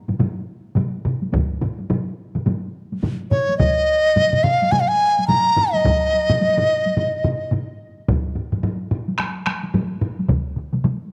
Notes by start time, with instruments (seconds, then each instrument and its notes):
0.08 taiko low-mid, taiko mid, taiko high
0.19 taiko low-mid, taiko mid, taiko high
0.76 taiko low-mid, taiko mid, taiko high
1.05 taiko low-mid, taiko mid
1.22 taiko high
1.33 taiko, taiko low-mid, taiko mid, taiko high
1.61 taiko low-mid, taiko mid
1.79 taiko high
1.90 taiko low-mid, taiko mid, taiko high
2.35 taiko low-mid, taiko mid, taiko high
2.46 taiko low-mid, taiko mid, taiko high
2.92 taiko high
3.03 taiko low-mid, taiko mid, taiko high
3.31 dizi C#5, taiko low-mid, taiko mid
3.49 taiko high
3.58 dizi D#5, taiko, taiko low-mid, taiko mid, taiko high
4.16 taiko low-mid, taiko mid, taiko high
4.33 taiko low-mid, taiko mid
4.43 dizi F5, taiko low-mid, taiko mid
4.62 taiko high
4.72 dizi G#5, taiko low-mid, taiko mid, taiko high
4.80 dizi F5
4.88 dizi G#5
5.19 taiko high
5.28 dizi A#5, taiko low-mid, taiko mid, taiko high
5.56 taiko low-mid, taiko mid
5.73 dizi D#5, taiko high
5.85 taiko, taiko low-mid, taiko mid, taiko high
6.13 taiko high
6.30 taiko low-mid, taiko mid, taiko high
6.41 taiko high
6.57 taiko low-mid, taiko mid
6.86 taiko high
6.97 taiko low-mid, taiko mid
7.24 taiko low-mid, taiko mid
7.52 taiko low-mid, taiko mid
8.08 taiko, taiko low-mid, taiko high
8.35 taiko low-mid
8.52 taiko low-mid, taiko high
8.63 taiko low-mid, taiko high
8.91 taiko low-mid
9.09 taiko high
9.18 taiko rim, taiko high
9.46 taiko rim, taiko high
9.63 taiko high
9.74 taiko low-mid, taiko high
10.01 taiko low-mid
10.19 taiko high
10.28 taiko, taiko mid, taiko high
10.56 taiko mid
10.73 taiko mid, taiko high
10.84 taiko mid, taiko high